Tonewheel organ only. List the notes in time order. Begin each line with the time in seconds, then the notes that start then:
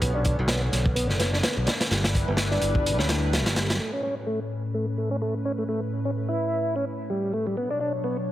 0.02 B3
0.15 D4
0.25 D4
0.48 B3
0.95 B3
1.19 B3
1.33 D4
1.44 B3
1.67 D4
1.80 B3
1.91 G3
2.28 B3
2.51 D4
2.99 C#4
3.33 F#3
3.56 G3
3.70 F#3
3.80 A3
3.93 C#4
4.03 C#4
4.27 A3
4.74 A3
4.98 A3
5.11 C#4
5.22 A3
5.45 C#4
5.58 A3
5.69 A3
6.05 C#4
6.29 E4
6.76 C#4
7.10 G3
7.34 A3
7.47 G3
7.57 B3
7.70 D4
7.80 D4
8.04 B3